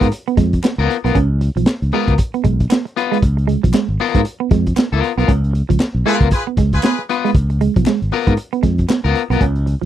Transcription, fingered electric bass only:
0.01 G#2
0.37 F2
0.78 C#2
1.04 B1
1.15 C#2
1.56 B1
1.82 C#2
2.08 C#2
2.45 B1
3.22 C#2
3.64 B1
3.89 G#1
4.15 G#2
4.51 F2
4.77 muted fingered electric bass stroke
4.92 C#2
5.18 B1
5.28 C#2
5.70 C#2
5.94 B1
6.20 C#2
6.57 C#2
7.34 C#2
7.76 B1
8.02 G#1
8.27 G#2
8.63 F2
8.90 muted fingered electric bass stroke
9.04 C#2
9.30 B1
9.41 C#2
9.82 C#2

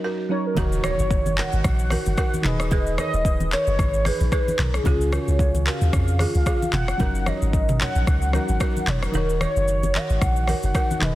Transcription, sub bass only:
0.57 D#1
1.00 F#1
1.53 G#1
1.64 A#1
2.07 F#1
2.45 D#1
3.14 D#1
3.67 F#1
3.79 G#1
4.21 A#1
4.59 B1
4.86 C#2
5.28 C#2
5.81 D#2
5.93 F2
6.35 C#2
6.73 F1
7.00 F#1
7.42 G#1
7.96 A#1
8.07 C#2
8.49 G#1
8.87 F1
9.14 D#1
9.56 F#1
10.10 G#1
10.22 A#1
10.64 F#1
11.02 D#1

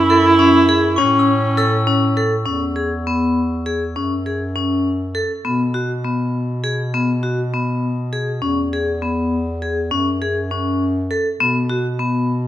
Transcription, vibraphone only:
0.10 A4
0.39 C#4
0.69 G#4
0.98 C#4
1.57 A4
1.87 C#4
2.17 A4
2.46 C#4
2.76 G#4
3.07 B3
3.66 G#4
3.96 C#4
4.26 G#4
4.56 C#4
5.15 A4
5.45 B3
5.74 F#4
6.04 B3
6.64 G#4
6.94 B3
7.23 F#4
7.54 B3
8.13 G#4
8.42 C#4
8.73 G#4
9.02 B3
9.62 G#4
9.91 C#4
10.22 G#4
10.51 C#4
11.11 A4
11.40 B3
11.70 F#4
11.99 B3

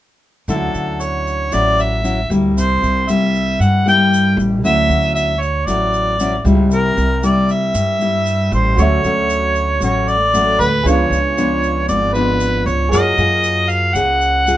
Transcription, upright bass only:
0.48 D2
0.74 D2
1.52 A1
2.30 D2
2.57 C2
2.83 C2
3.60 G2
4.37 A1
4.63 D2
4.89 D2
5.67 A1
6.45 C#2
6.70 C2
6.97 C2
7.74 G2
8.52 A1
8.77 D2
9.04 D2
9.80 A1
10.59 D2
10.84 C#2
11.10 C#2
11.89 G#1
12.66 C#2
12.92 F#2
13.18 F#2
13.95 C#2

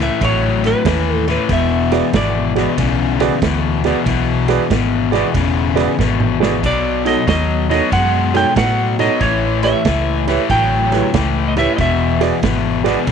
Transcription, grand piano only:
1.92 F#4 G#4 B4 D5
2.55 F#4 G#4 B4 D5
3.21 F#4 G#4 B4 D5
3.85 F#4 G#4 B4 D5
4.49 F#4 G#4 B4 D5
5.12 F#4 G#4 B4 D5
5.76 F#4 G#4 B4 D5
6.40 F#4 G#4 B4 D5
7.05 D#4 F#4 A4 C#5
7.70 D#4 F#4 A4 C#5
8.34 D#4 F#4 A4 C#5
8.99 D#4 F#4 A4 C#5
9.63 E4 G4 B4 C#5
10.27 E4 G4 B4 C#5
10.92 E4 G4 B4 C#5
11.56 E4 G4 B4 C#5
12.21 F#4 G#4 B4 D5
12.84 F#4 G#4 B4 D5

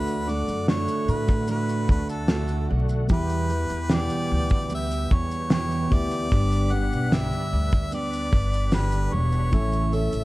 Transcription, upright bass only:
Already playing: D2
0.48 F#2
1.08 A2
1.89 D2
2.70 B1
3.10 E2
3.70 E2
4.31 D2
5.11 E2
5.92 D2
6.32 G1
6.93 B1
7.53 D2
8.33 G1
9.13 E1
9.53 A1
10.13 A1

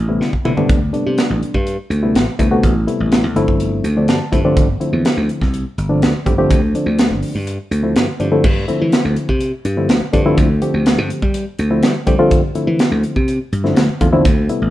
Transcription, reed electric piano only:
0.09 C3 G3 A3 B3 E4
0.45 C3 G3 A3 B3 E4
0.57 C3 G3 A3 B3 D4
0.93 C3 G3 A3 B3 D4
2.03 C3 G3 A3 B3 E4
2.39 C3 G3 A3 B3 E4
2.51 C3 G3 A3 B3 F#4
2.87 C3 G3 A3 B3 E4
3.36 D3 F3 A3 C4 E4
3.97 D3 F3 A3 C4 D4
4.09 A5
4.32 D3 F3 A3 C4 E4
4.45 D3 F3 A3 C4 D4
4.80 D3 F3 A3 C4 E4
5.89 D3 F3 A3 C4 D4
6.26 D3 F3 A3 C4 G4
6.38 D3 F3 A3 C4 G4
6.75 D3 F3 A3 C4 D4
7.83 D3 F3 A3 C4 E4
8.20 D3 F3 A3 C4 D4
8.32 D3 F3 A3 C4 E4
8.68 D3 F3 A3 C4 E4
9.77 D3 F3 A3 C4 E4
10.13 D3 F3 A3 C4 D4
10.25 D3 F3 A3 C4 E4
10.62 D3 F3 A3 C4 G4
11.71 D3 F3 A3 C4 E4
12.07 D3 F3 A3 C4 G4
12.19 D3 F3 A3 C4 F4
12.55 D3 F3 A3 C4 E4
13.64 D3 F3 A3 C4 E4
14.01 D3 F3 A3 C4 F4
14.13 D3 F3 A3 C4 E4
14.50 C3 G3 A3 B3 E4

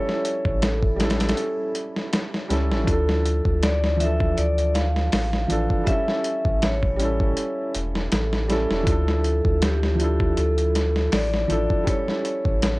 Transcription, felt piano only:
Already playing: G3 C#4 E4 A4
0.96 G3 C#4
1.02 E4 A4
2.48 G3 C#4 E4
2.52 A4
2.84 F3 D4
2.90 E4 A4
3.97 F3 D4
4.02 E3 A4
5.48 E3 F3 D4
5.52 A4
5.84 G3 C#4
5.89 E4 A4
6.96 G3 C#4
7.02 E4 A4
8.48 G3 C#4 E4
8.52 A4
8.83 F3 D4
8.89 E4 A4
9.95 F3 D4
10.01 E4 A4
11.48 F3 D4 E4
11.52 A4
11.83 G3 C#4
11.89 E4 A4

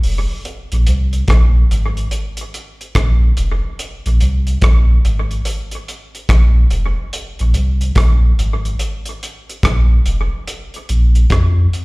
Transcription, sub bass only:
0.04 F1
0.72 A#1
0.88 C2
1.28 A#1
1.71 G#1
2.96 A#1
3.38 F1
4.06 A#1
4.22 C2
4.62 A#1
5.05 G#1
6.29 A#1
6.72 F1
7.40 A#1
7.55 C2
7.96 A#1
8.39 G#1
9.64 A#1
10.06 F1
10.90 A#1
11.31 F2

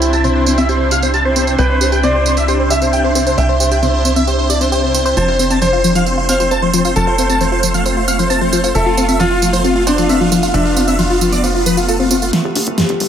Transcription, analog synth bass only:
Already playing: C2
1.59 C2
3.38 C2
5.17 F1
6.96 F1
8.75 F1
10.54 F1
12.44 G1
12.56 G1
12.67 G1
12.89 G1
13.00 G1

